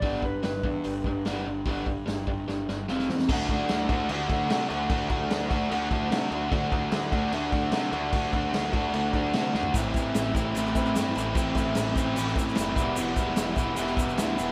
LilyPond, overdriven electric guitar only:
\new Staff \with { instrumentName = "Overdriven electric guitar" } { \time 4/4 \key d \mixolydian \tempo 4 = 149 <g b d'>8 <g d'>8 <g d'>8 <g d'>8 <g d'>8 <g d'>8 <g b d'>8 <g d'>8 | <g b d'>8 <g d'>8 <g d'>8 <g d'>8 <g d'>8 <g d'>8 <f c' f'>8 <f c'>8 | <d a d' fis'>8 <a d' fis'>4 <a d' fis'>8 <d a d' fis'>8 <a d' fis'>8 <d a d' fis'>8 <a d' fis'>8 | <d a d' fis'>8 <a d' fis'>4 <a d' fis'>8 <d a d' fis'>8 <a d' fis'>8 <d a d' fis'>8 <a d' fis'>8 |
<d a d' fis'>8 <a d' fis'>4 <a d' fis'>8 <d a d' fis'>8 <a d' fis'>8 <d a d' fis'>8 <a d' fis'>8 | <d a d' fis'>8 <a d' fis'>4 <a d' fis'>8 <d a d' fis'>8 <a d' fis'>8 <d a d' fis'>8 <a d' fis'>8 | <a, e a c' e'>8 <a c' e'>4 <a c' e'>8 <a, e a c' e'>8 <a c' e'>8 <e a c' e'>8 <a c' e'>8 | <a, e a c' e'>8 <a c' e'>4 <a c' e'>8 <a, e a c' e'>8 <a c' e'>8 <e a c' e'>8 <e, b, e g b e'>8 |
<e, b, e g b e'>8 <e g b e'>4 <e g b e'>8 <e, b, e g b e'>8 <e g b e'>8 <e g b e'>8 <e g b e'>8 | }